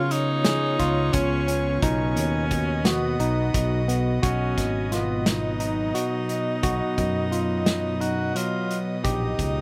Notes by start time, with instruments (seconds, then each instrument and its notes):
Already playing: fingered electric bass C#3, analog synth pad C#3 B3 F4 C#5, alto saxophone F4
0.11 alto saxophone D#4, closed hi-hat
0.44 tine electric piano G#4, snare, closed hi-hat
0.79 fingered electric bass C#2, tine electric piano F4, kick, closed hi-hat
1.13 fingered electric bass C#2, alto saxophone C#4, kick, closed hi-hat
1.48 tine electric piano C#4, closed hi-hat
1.82 fingered electric bass B1, analog synth pad B2 B3 F#4 D#5, alto saxophone C#4, tine electric piano D#4, kick, closed hi-hat
2.16 fingered electric bass D#2, closed hi-hat
2.51 kick, closed hi-hat
2.85 alto saxophone B3, tine electric piano F#4, snare, closed hi-hat
3.19 fingered electric bass B1, tine electric piano D#4, closed hi-hat
3.54 fingered electric bass B1, kick, closed hi-hat
3.88 tine electric piano B3, closed hi-hat
4.23 fingered electric bass B1, analog synth pad B2 F#3 B3 D#5, alto saxophone C#4, tine electric piano F#4, kick, closed hi-hat
4.58 fingered electric bass G#1, kick, snare, closed hi-hat
4.92 alto saxophone B3, tine electric piano F4, snare, closed hi-hat
5.26 alto saxophone D#4, snare, closed hi-hat
5.60 tine electric piano D#4, closed hi-hat
5.94 tine electric piano F#4, closed hi-hat
6.29 closed hi-hat
6.63 fingered electric bass B1, tine electric piano F#4, kick, closed hi-hat
6.98 fingered electric bass F#2, kick, closed hi-hat
7.32 tine electric piano F4, closed hi-hat
7.66 snare, closed hi-hat
8.00 tine electric piano D#4, alto saxophone F#4, closed hi-hat
8.35 tine electric piano F#3, alto saxophone F4, closed hi-hat
8.71 closed hi-hat
9.03 fingered electric bass A#1, analog synth pad A#2 A#3 G4 D#5, alto saxophone D#4, tine electric piano G4, kick, closed hi-hat
9.39 fingered electric bass C#2, kick, closed hi-hat